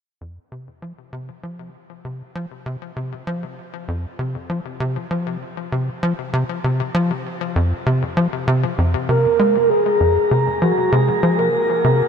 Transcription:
0.21 F2
0.52 C3
0.82 F3
1.13 C3
1.43 F3
2.05 C3
2.35 F3
2.66 C3
2.96 C3
3.27 F3
3.88 F2
4.19 C3
4.50 F3
4.80 C3
5.11 F3
5.72 C3
6.03 F3
6.33 C3
6.64 C3
6.94 F3
7.56 F2
7.86 C3
8.17 F3
8.47 C3
8.78 F2
9.09 C3 A#4
9.39 G#3
9.70 G#4
10.00 F2
10.31 C3
10.62 F3 F#4
10.92 C3 G#4
11.23 F3
11.38 A#4
11.84 C3

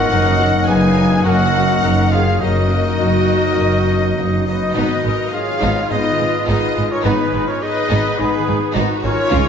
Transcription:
Already playing: G#2 D#3 G#3 B3 D#4 F4 F#4 G#4 A#4 D#5 F#5
0.10 F#1 F#2 A#2 A#3 D#4
0.31 F#3
0.38 A#3 D#4 F#4
0.66 F#1 F#2 A#3 D#4 G#4 B4 F5 G#5
0.88 A#5
0.96 A#3 D#4
1.07 D#4
1.24 F#1 F#2 A#3 D#4 F#4 A#4 D#5 F#5
1.44 F#3
1.52 A#3 D#4
1.83 F#1 F#2 A#3 D#4 A#4
2.10 A#3 D#4 F4 G#4 C#5 F5
2.23 D#4
2.40 F#1 F#2 A#3 D#4 F#4 A#4 D#5
2.62 F#3
2.70 A#3 D#4
3.00 F#1 F#2 A#3 D#4
3.30 A#3 D#4
3.40 D#4
3.58 F#1 F#2 A#3 D#4
3.78 F#3
3.88 A#3 D#4
4.17 F#1 F#2 A#3 D#4
4.46 A#3 D#4 F#4 B4 D#5
4.56 D#4
4.75 G#1 G#2 B3 D#4 B4
4.95 D#3
5.04 G#1 G#2 G#3 A#4
5.14 B3
5.31 D#4 F4 G#4 C#5 F5
5.53 G#4
5.61 G#1 G#2 B3 D#4 F4
5.73 D#4
5.89 G#1 G#2 G#3 B3 D#4 G#4 B4 D#5
6.11 D#3
6.19 G#1 G#2 G#3 B3
6.30 B3
6.47 G#1 G#2 B3 D#4 G#4 B4 D#5
6.68 G#4
6.76 G#1 G#2 G#3
6.87 C#4 D#4 F4 C#5
6.92 A#4 C#5
7.04 G#1 G#2 B3 D#4 G#4 B4
7.25 D#3
7.33 G#1 G#2 G#3
7.44 B3 C#4 F4 A#4
7.48 C#5
7.62 D#4 G#4 B4 D#5
7.82 G#4
7.91 G#1 G#2 B3 D#4
8.01 D#4
8.18 G#1 G#2 G#3 B3 D#4 G#4 B4
8.39 D#3
8.47 G#1 G#2 G#3 B3
8.58 B3
8.75 G#1 G#2 B3 D#4 F#4
8.96 G#4
9.03 G#1 G#2 G#3 C#4 F4 A#4 C#5
9.15 D#4
9.31 C#2 C#3 G#3 C#4 F4 G#4

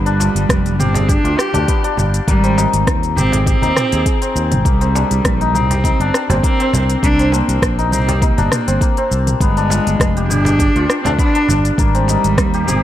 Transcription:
Already playing: G1 G3 B3 G4
0.06 D4, cajon slap, closed hi-hat, shaker
0.20 F4, cajon slap, shaker
0.35 G1, closed hi-hat, shaker
0.49 F1, kick, cross-stick, closed hi-hat, shaker
0.66 closed hi-hat, shaker
0.79 G1 C4 G4, mid tom, shaker
0.94 G#4, cajon bass, cajon slap, closed hi-hat, shaker
1.08 D4 G4, kick, closed hi-hat, shaker
1.24 D2 F4, closed hi-hat
1.38 G4, cross-stick, shaker
1.54 D2 D4, cajon bass, cajon slap, closed hi-hat, shaker
1.68 B3, kick, closed hi-hat, shaker
1.84 D4, closed hi-hat
1.97 G1, cajon bass, shaker
2.14 closed hi-hat, shaker
2.28 G#1 G3 A#3, kick, closed hi-hat, shaker
2.44 C4, cajon slap, closed hi-hat, shaker
2.58 D#4, cajon slap, shaker
2.73 G#1, closed hi-hat, shaker
2.87 D#2, kick, cross-stick, closed hi-hat, shaker
3.03 closed hi-hat, shaker
3.17 G#1 C4 G4, mid tom, shaker
3.32 G#4, cajon bass, cajon slap, closed hi-hat, shaker
3.46 C4 G4, kick, closed hi-hat, shaker
3.62 D#2 D#4, cajon bass, closed hi-hat, shaker
3.76 G4, cross-stick, mid tom, shaker
3.92 D#2 G#4, closed hi-hat, shaker
4.06 G#4, kick, closed hi-hat, shaker
4.22 C4, closed hi-hat, shaker
4.36 D#2, shaker
4.52 G#1, closed hi-hat, mid tom, shaker
4.65 C2 G3 A#3, kick, closed hi-hat, shaker
4.81 C4, cajon slap, closed hi-hat, shaker
4.95 D4, cajon slap, shaker
5.11 C2, closed hi-hat, shaker
5.25 A#1, kick, cross-stick, closed hi-hat, shaker
5.41 D#4, closed hi-hat, shaker
5.54 C2 C4 D#4, mid tom, shaker
5.70 G4, cajon bass, cajon slap, closed hi-hat, shaker
5.84 D#4, kick, closed hi-hat, shaker
6.00 G1 D4, closed hi-hat
6.14 cross-stick, shaker
6.30 G1 A#3 C4, cajon bass, cajon slap, closed hi-hat, shaker
6.43 A#3 C4, kick, closed hi-hat, shaker
6.60 C4, closed hi-hat
6.73 C2, cajon bass, shaker
6.89 closed hi-hat, shaker
7.03 C2 A#3 D4, kick, closed hi-hat, shaker
7.19 C4, cajon slap, closed hi-hat, shaker
7.32 A#3 D4, cajon slap, shaker
7.49 C2, closed hi-hat, shaker
7.62 A#1, kick, cross-stick, closed hi-hat, shaker
7.79 D#4, closed hi-hat, shaker
7.92 C2 C4 D#4, mid tom, shaker
8.08 G4, cajon bass, cajon slap, closed hi-hat, shaker
8.22 A#3 D#4, kick, closed hi-hat, shaker
8.38 G1 D4, cajon bass, closed hi-hat, shaker
8.52 cross-stick, mid tom, shaker
8.68 G1 C4, closed hi-hat, shaker
8.81 A#3, kick, closed hi-hat, shaker
8.97 C4, closed hi-hat
9.11 C2, shaker
9.27 closed hi-hat, mid tom, shaker
9.40 G1 G#3 B3, kick, closed hi-hat, shaker
9.57 D4, cajon slap, closed hi-hat, shaker
9.70 F4, cajon slap, shaker
9.87 G1, closed hi-hat, shaker
10.00 F1, kick, cross-stick, closed hi-hat, shaker
10.17 G4, closed hi-hat, shaker
10.29 G1 D4 G4, mid tom, shaker
10.45 G#4, cajon bass, cajon slap, closed hi-hat, shaker
10.59 G4, kick, closed hi-hat, shaker
10.76 D2 F4, closed hi-hat
10.90 cross-stick, shaker
11.04 D2 C4 D4, cajon bass, cajon slap, closed hi-hat, shaker
11.18 B3 D4, kick, closed hi-hat, shaker
11.35 D4, closed hi-hat
11.48 G1, cajon bass, shaker
11.65 closed hi-hat, shaker
11.78 G#1 G3 A#3, kick, closed hi-hat, shaker
11.94 C4, cajon slap, closed hi-hat, shaker
12.08 D#4, cajon slap, shaker
12.24 G#1, closed hi-hat, shaker
12.38 D#2, kick, cross-stick, closed hi-hat, shaker
12.54 G4, closed hi-hat, shaker
12.67 G#1 C4 G4, mid tom, shaker

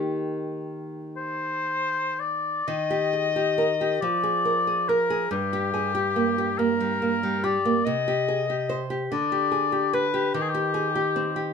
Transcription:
Already playing: D#3 A#3 D#4 G4
1.17 C5
2.20 D5
2.67 D#3 D#5
2.90 G4
3.13 G#4
3.36 G4
3.58 A#4
3.81 G4
4.01 F3 D5
4.24 G#4
4.45 A#4
4.67 G#4
4.88 A#4
5.10 G#4
5.31 G2 G4
5.53 G4
5.74 G#4
5.95 G4
6.16 A#3
6.38 G4
6.58 A#3 A#4
6.80 G3
7.02 A#3
7.23 G3
7.44 G4 D5
7.65 A#3
7.85 C3 D#5
8.08 G4
8.28 G#4
8.50 G4
8.69 C5
8.90 G4
9.12 D3 D5
9.32 G4
9.52 G#4
9.72 G4
9.93 B4
10.14 G4
10.34 D#3 G4
10.41 G#4
10.49 G4
10.54 G4
10.74 G#4
10.95 G4
11.16 C4
11.36 G4

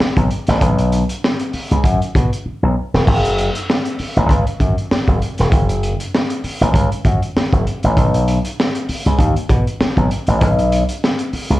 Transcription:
0.00 muted slap bass stroke, snare
0.17 B1, kick, closed hi-hat
0.31 closed hi-hat
0.47 A1, snare, closed hi-hat
0.61 B1, kick, closed hi-hat
0.78 closed hi-hat
0.92 closed hi-hat
1.09 closed hi-hat
1.24 snare
1.39 closed hi-hat
1.53 muted slap bass stroke, open hi-hat
1.71 C#2, closed hi-hat
1.84 F#2, kick, closed hi-hat
2.02 closed hi-hat
2.15 B2, kick, closed hi-hat
2.33 closed hi-hat
2.46 muted slap bass stroke
2.63 B1
2.94 E1, snare
3.07 F#1, kick, crash
3.25 closed hi-hat
3.38 closed hi-hat
3.55 closed hi-hat
3.70 snare
3.85 closed hi-hat
3.99 muted slap bass stroke, open hi-hat
4.16 A1, closed hi-hat
4.29 C#2, kick, closed hi-hat
4.47 closed hi-hat
4.60 F#2, kick, closed hi-hat
4.78 closed hi-hat
4.91 muted slap bass stroke, snare
5.08 F#1, kick, closed hi-hat
5.22 closed hi-hat
5.38 E1, snare, closed hi-hat
5.52 F#1, kick, closed hi-hat
5.69 closed hi-hat
5.83 closed hi-hat
6.00 closed hi-hat
6.15 snare
6.30 closed hi-hat
6.44 muted slap bass stroke, open hi-hat
6.61 A1, closed hi-hat
6.74 C#2, kick, closed hi-hat
6.92 closed hi-hat
7.05 F#2, kick, closed hi-hat
7.22 closed hi-hat
7.36 muted slap bass stroke, snare
7.52 F#1, kick, closed hi-hat
7.67 closed hi-hat
7.83 A1, closed hi-hat
7.97 B1, kick, closed hi-hat
8.14 closed hi-hat
8.28 closed hi-hat
8.45 closed hi-hat
8.60 snare
8.75 closed hi-hat
8.89 muted slap bass stroke, open hi-hat
9.06 C#2, closed hi-hat
9.18 D#2, kick, closed hi-hat
9.36 closed hi-hat
9.49 B2, kick, closed hi-hat
9.67 closed hi-hat
9.80 muted slap bass stroke, snare
9.97 B1, kick, closed hi-hat
10.11 closed hi-hat
10.27 A1, closed hi-hat
10.41 B1, kick, closed hi-hat
10.59 closed hi-hat
10.72 closed hi-hat
10.89 closed hi-hat
11.04 snare
11.19 closed hi-hat
11.33 muted slap bass stroke, open hi-hat
11.50 C#2, closed hi-hat

